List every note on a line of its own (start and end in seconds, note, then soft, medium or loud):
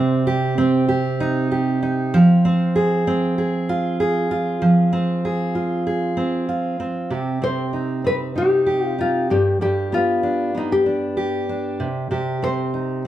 0.00 2.13 C3 medium
0.00 0.57 C4 medium
0.00 0.26 G4 medium
0.27 0.87 G4 medium
0.58 2.45 C4 medium
0.89 1.50 G4 medium
1.20 1.81 D#4 medium
1.51 2.20 G4 medium
1.83 2.20 D#4 medium
2.14 4.61 F3 medium
2.45 3.07 C4 medium
2.76 3.38 G#4 medium
3.07 4.92 C4 medium
3.38 4.00 G#4 medium
3.69 4.31 F4 medium
4.00 5.24 G#4 medium
4.31 5.55 F4 medium
4.62 7.11 F3 medium
4.93 6.16 C4 medium
5.25 5.85 G#4 medium
5.55 6.47 F4 medium
5.87 7.10 G#4 medium
6.17 6.79 C4 medium
6.49 7.17 F4 medium
6.80 7.41 C4 medium
7.10 9.36 C3 medium
7.10 8.66 G4 soft
7.42 8.03 C4 soft
7.42 8.01 C5 medium
7.73 8.34 D#4 soft
8.04 9.36 C4 soft
8.04 8.15 B4 medium
8.36 8.97 D#4 soft
8.36 8.87 G4 medium
8.66 9.61 G4 medium
8.87 9.00 F4 medium
8.98 9.36 D#4 soft
8.98 9.31 F4 medium
9.30 9.60 G2 medium
9.30 9.61 G4 medium
9.61 11.86 G2 medium
9.61 11.16 G4 soft
9.61 9.94 G4 medium
9.92 10.53 B3 soft
9.92 10.57 F4 medium
10.23 10.85 D4 medium
10.55 11.86 B3 soft
10.55 10.72 D#4 medium
10.72 11.77 G4 medium
10.86 11.48 D4 soft
11.17 12.11 G4 medium
11.49 11.86 D4 soft
11.80 12.10 C3 medium
12.11 13.07 C3 medium
12.11 13.07 G4 medium
12.42 13.05 C4 soft
12.42 13.02 C5 medium
12.74 13.07 D#4 soft